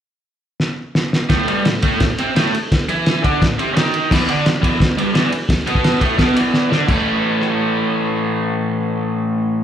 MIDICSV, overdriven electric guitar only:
0, 0, Header, 1, 3, 480
1, 0, Start_track
1, 0, Key_signature, 3, "major"
1, 0, Tempo, 350467
1, 1779, Time_signature, 4, 2, 24, 8
1, 13200, End_track
2, 0, Start_track
2, 0, Title_t, "Overdriven electric guitar"
2, 0, Program_c, 0, 29
2, 1772, Note_on_c, 0, 45, 105
2, 1778, Note_on_c, 0, 57, 115
2, 2010, Note_off_c, 0, 45, 0
2, 2013, Note_off_c, 0, 57, 0
2, 2023, Note_on_c, 0, 43, 94
2, 2026, Note_on_c, 0, 55, 93
2, 2256, Note_off_c, 0, 43, 0
2, 2256, Note_on_c, 0, 45, 73
2, 2257, Note_off_c, 0, 55, 0
2, 2451, Note_off_c, 0, 45, 0
2, 2505, Note_on_c, 0, 45, 91
2, 2512, Note_on_c, 0, 57, 101
2, 2737, Note_off_c, 0, 45, 0
2, 2740, Note_off_c, 0, 57, 0
2, 2760, Note_on_c, 0, 45, 83
2, 2944, Note_off_c, 0, 45, 0
2, 3003, Note_on_c, 0, 48, 84
2, 3014, Note_on_c, 0, 60, 98
2, 3223, Note_off_c, 0, 48, 0
2, 3226, Note_off_c, 0, 60, 0
2, 3228, Note_on_c, 0, 45, 97
2, 3231, Note_on_c, 0, 57, 114
2, 3459, Note_off_c, 0, 45, 0
2, 3460, Note_off_c, 0, 57, 0
2, 3956, Note_on_c, 0, 52, 96
2, 3966, Note_on_c, 0, 64, 103
2, 4420, Note_off_c, 0, 52, 0
2, 4426, Note_off_c, 0, 64, 0
2, 4426, Note_on_c, 0, 50, 89
2, 4432, Note_on_c, 0, 62, 104
2, 4655, Note_off_c, 0, 50, 0
2, 4659, Note_off_c, 0, 62, 0
2, 4663, Note_on_c, 0, 45, 77
2, 4853, Note_off_c, 0, 45, 0
2, 4909, Note_on_c, 0, 48, 85
2, 4921, Note_on_c, 0, 60, 91
2, 5143, Note_off_c, 0, 48, 0
2, 5143, Note_on_c, 0, 51, 101
2, 5163, Note_off_c, 0, 60, 0
2, 5163, Note_on_c, 0, 63, 110
2, 5611, Note_off_c, 0, 51, 0
2, 5621, Note_off_c, 0, 63, 0
2, 5631, Note_on_c, 0, 40, 99
2, 5643, Note_on_c, 0, 52, 113
2, 5855, Note_off_c, 0, 40, 0
2, 5860, Note_on_c, 0, 50, 102
2, 5861, Note_off_c, 0, 52, 0
2, 5873, Note_on_c, 0, 62, 108
2, 6088, Note_off_c, 0, 50, 0
2, 6095, Note_off_c, 0, 62, 0
2, 6097, Note_on_c, 0, 40, 75
2, 6286, Note_off_c, 0, 40, 0
2, 6324, Note_on_c, 0, 40, 86
2, 6333, Note_on_c, 0, 52, 100
2, 6551, Note_off_c, 0, 40, 0
2, 6564, Note_off_c, 0, 52, 0
2, 6567, Note_on_c, 0, 40, 81
2, 6759, Note_off_c, 0, 40, 0
2, 6813, Note_on_c, 0, 43, 84
2, 6826, Note_on_c, 0, 55, 88
2, 7029, Note_off_c, 0, 43, 0
2, 7034, Note_on_c, 0, 40, 101
2, 7035, Note_off_c, 0, 55, 0
2, 7040, Note_on_c, 0, 52, 100
2, 7252, Note_off_c, 0, 40, 0
2, 7275, Note_off_c, 0, 52, 0
2, 7761, Note_on_c, 0, 47, 88
2, 7764, Note_on_c, 0, 59, 102
2, 8204, Note_off_c, 0, 47, 0
2, 8210, Note_on_c, 0, 45, 92
2, 8226, Note_off_c, 0, 59, 0
2, 8232, Note_on_c, 0, 57, 97
2, 8446, Note_off_c, 0, 45, 0
2, 8452, Note_on_c, 0, 47, 108
2, 8456, Note_off_c, 0, 57, 0
2, 8462, Note_on_c, 0, 59, 113
2, 8693, Note_on_c, 0, 40, 79
2, 8697, Note_off_c, 0, 47, 0
2, 8702, Note_off_c, 0, 59, 0
2, 8707, Note_on_c, 0, 52, 93
2, 9169, Note_on_c, 0, 50, 87
2, 9176, Note_off_c, 0, 40, 0
2, 9183, Note_off_c, 0, 52, 0
2, 9187, Note_on_c, 0, 62, 89
2, 9411, Note_off_c, 0, 50, 0
2, 9416, Note_on_c, 0, 45, 101
2, 9424, Note_off_c, 0, 62, 0
2, 9435, Note_on_c, 0, 52, 96
2, 9448, Note_on_c, 0, 57, 101
2, 9465, Note_on_c, 0, 61, 93
2, 9471, Note_on_c, 0, 69, 121
2, 13200, Note_off_c, 0, 45, 0
2, 13200, Note_off_c, 0, 52, 0
2, 13200, Note_off_c, 0, 57, 0
2, 13200, Note_off_c, 0, 61, 0
2, 13200, Note_off_c, 0, 69, 0
2, 13200, End_track
3, 0, Start_track
3, 0, Title_t, "Muted overdriven electric guitar strokes"
3, 3476, Note_on_c, 9, 29, 53
3, 3613, Note_off_c, 9, 29, 0
3, 7268, Note_on_c, 9, 29, 60
3, 7405, Note_off_c, 9, 29, 0
3, 13200, End_track
0, 0, End_of_file